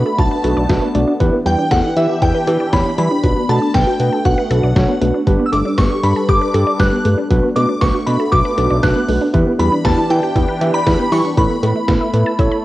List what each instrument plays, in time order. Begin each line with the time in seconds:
Already playing: analog synth pad A3 B3 D4, tine electric piano D4 F#4 B4, synth bell B5
0.06 synth arpeggio sound A4
0.18 analog synth bass B1, tine electric piano D4 F#4 B4, synth arpeggio sound F#4, synth bell A5, kick, closed hi-hat
0.31 synth arpeggio sound B4
0.44 analog synth bass B1, tine electric piano D4 F#4 B4, synth arpeggio sound A4, closed hi-hat
0.57 analog synth bass B1, synth arpeggio sound D5
0.69 analog synth bass B1, synth arpeggio sound F#3, tine electric piano D4 F#4 B4, kick, snare, closed hi-hat
0.82 synth arpeggio sound B3
0.95 analog synth bass B1, synth arpeggio sound A3, tine electric piano D4 F#4 D5, closed hi-hat
1.08 synth arpeggio sound D4
1.20 analog synth bass E2, analog synth pad E3 D4 G4, synth arpeggio sound E3, tine electric piano E4 G4 B4, kick, closed hi-hat
1.33 synth arpeggio sound B3
1.46 analog synth bass E2, synth arpeggio sound G3, tine electric piano E4 G4 B4, synth bell G5, closed hi-hat
1.58 synth arpeggio sound D4
1.71 analog synth bass E2, synth arpeggio sound B3, tine electric piano E4 G4 A4, synth bell F#5, kick, snare, closed hi-hat
1.84 synth arpeggio sound E4
1.96 analog synth bass E3, tine electric piano E4 G4 B4, synth bell E5, closed hi-hat
2.09 synth arpeggio sound G4
2.22 analog synth bass E2, synth arpeggio sound E4, tine electric piano E4 G4 B4, synth bell G5, kick, closed hi-hat
2.35 synth arpeggio sound B4
2.47 analog synth bass E3, tine electric piano E4 G4 B4, synth arpeggio sound G4, closed hi-hat
2.60 synth arpeggio sound D5
2.73 analog synth bass E2, synth arpeggio sound E3, tine electric piano E4 G4 C#5, synth bell B5, kick, snare, closed hi-hat
2.85 synth arpeggio sound B3
2.98 analog synth bass E3, synth arpeggio sound G3, tine electric piano E4 G4 B4, synth bell B5, closed hi-hat
3.11 synth arpeggio sound D4
3.23 analog synth bass B1, synth arpeggio sound F#3, analog synth pad A3 B3, tine electric piano D4 F#4 B4, kick, closed hi-hat
3.36 synth arpeggio sound B3
3.49 analog synth bass B2, synth arpeggio sound A3, tine electric piano D4 F#4 A4, synth bell A5, closed hi-hat
3.62 synth arpeggio sound D4
3.74 analog synth bass B1, synth arpeggio sound B3, tine electric piano D4 F#4 B4, synth bell G5, kick, snare, closed hi-hat
3.87 synth arpeggio sound F#4
4.00 analog synth bass B2, tine electric piano D4 F#4 B4, closed hi-hat
4.13 synth arpeggio sound A4
4.25 analog synth bass B1, tine electric piano D4 F#4 B4, synth arpeggio sound F#4, synth bell F#5, kick, closed hi-hat
4.38 synth arpeggio sound B4
4.51 analog synth bass B1, tine electric piano D4 F#4 B4, synth arpeggio sound A4, closed hi-hat
4.63 analog synth bass B1, synth arpeggio sound D5
4.76 analog synth bass B1, synth arpeggio sound F#3, tine electric piano D4 F#4 C#5, kick, snare, closed hi-hat
4.89 synth arpeggio sound B3
5.02 analog synth bass B1, synth arpeggio sound A3, tine electric piano D4 F#4 B4, closed hi-hat
5.14 synth arpeggio sound D4
5.27 analog synth bass G1, synth arpeggio sound G3, analog synth pad G3 A4 B4, tine electric piano D4 G4 B4, kick, closed hi-hat
5.40 synth arpeggio sound B3
5.46 synth bell E6
5.52 analog synth bass G1, synth arpeggio sound A3, tine electric piano D4 G4 A4, synth bell D6, closed hi-hat
5.65 synth arpeggio sound D4
5.78 analog synth bass G1, synth arpeggio sound B3, tine electric piano D4 G4 B4, synth bell C#6, kick, snare, closed hi-hat
5.91 synth arpeggio sound G4
6.03 analog synth bass G2, tine electric piano D4 G4 B4, synth bell B5, closed hi-hat
6.16 synth arpeggio sound A4
6.29 analog synth bass G1, tine electric piano D4 G4 B4, synth arpeggio sound G4, synth bell D6, kick, closed hi-hat
6.41 synth arpeggio sound B4
6.54 analog synth bass G2, tine electric piano D4 G4 A4, synth arpeggio sound A4, closed hi-hat
6.67 synth arpeggio sound D5
6.79 analog synth bass G1, synth arpeggio sound G3, tine electric piano D4 G4 B4, synth bell F#6, kick, snare, closed hi-hat
6.92 synth arpeggio sound B3
7.05 analog synth bass G2, synth arpeggio sound A3, tine electric piano D4 G4 B4, closed hi-hat
7.18 synth arpeggio sound D4
7.30 analog synth bass B1, synth arpeggio sound F#3, analog synth pad A3 B3, tine electric piano D4 F#4 B4, kick, closed hi-hat
7.43 synth arpeggio sound B3
7.56 analog synth bass B2, synth arpeggio sound A3, tine electric piano D4 F#4 B4, synth bell D6, closed hi-hat
7.69 synth arpeggio sound D4
7.81 analog synth bass B1, synth arpeggio sound B3, tine electric piano D4 F#4 B4, synth bell C#6, kick, snare, closed hi-hat
7.94 synth arpeggio sound F#4
8.06 analog synth bass B2, tine electric piano D4 F#4 B4, synth bell B5, closed hi-hat
8.20 synth arpeggio sound A4
8.32 analog synth bass B1, tine electric piano D4 F#4 B4, synth arpeggio sound F#4, synth bell D6, kick, closed hi-hat
8.45 synth arpeggio sound B4
8.57 analog synth bass B1, tine electric piano D4 F#4 B4, synth arpeggio sound A4, closed hi-hat
8.70 analog synth bass B1, synth arpeggio sound D5
8.83 analog synth bass B1, synth arpeggio sound F#3, tine electric piano D4 F#4 B4, synth bell F#6, kick, snare, closed hi-hat
8.96 synth arpeggio sound B3
9.08 analog synth bass B1, synth arpeggio sound A3, tine electric piano D4 F#4 B4, open hi-hat
9.21 synth arpeggio sound D4
9.34 analog synth bass E2, synth arpeggio sound E3, analog synth pad E3 D4 G4, tine electric piano E4 G4 B4, kick, closed hi-hat
9.47 synth arpeggio sound B3
9.59 analog synth bass E2, synth arpeggio sound G3, tine electric piano E4 G4 B4, synth bell B5, closed hi-hat
9.72 synth arpeggio sound D4
9.85 analog synth bass E2, synth arpeggio sound B3, tine electric piano E4 G4 B4, synth bell A5, kick, snare, closed hi-hat
9.98 synth arpeggio sound E4
10.10 analog synth bass E3, tine electric piano E4 G4 B4, synth bell G5, closed hi-hat
10.23 synth arpeggio sound G4
10.35 analog synth bass E2, tine electric piano E4 G4 B4, synth arpeggio sound E4, kick, closed hi-hat
10.48 synth arpeggio sound B4
10.61 analog synth bass E3, tine electric piano E4 G4 B4, synth arpeggio sound G4, closed hi-hat
10.74 synth arpeggio sound D5, synth bell B5
10.86 analog synth bass E2, synth arpeggio sound E3, tine electric piano E4 G4 B4, kick, snare, closed hi-hat
10.99 synth arpeggio sound B3
11.12 analog synth bass E3, synth arpeggio sound G3, tine electric piano E4 G4 B4, synth bell C#6, open hi-hat
11.25 synth arpeggio sound D4
11.37 analog synth bass A1, synth arpeggio sound E3, analog synth pad A3 E4, tine electric piano E4 A4 B4, synth bell B5, kick, closed hi-hat
11.50 synth arpeggio sound B3
11.63 analog synth bass A2, synth arpeggio sound A3, tine electric piano E4 A4 B4, closed hi-hat
11.76 synth arpeggio sound E4
11.88 analog synth bass A1, synth arpeggio sound B3, tine electric piano E4 A4 B4, kick, snare, closed hi-hat
12.01 synth arpeggio sound E5
12.14 analog synth bass A2, tine electric piano E4 A4 B4, closed hi-hat
12.26 synth arpeggio sound A5
12.39 analog synth bass A1, tine electric piano E4 A4 C#5, synth arpeggio sound E5, kick, closed hi-hat
12.52 synth arpeggio sound B5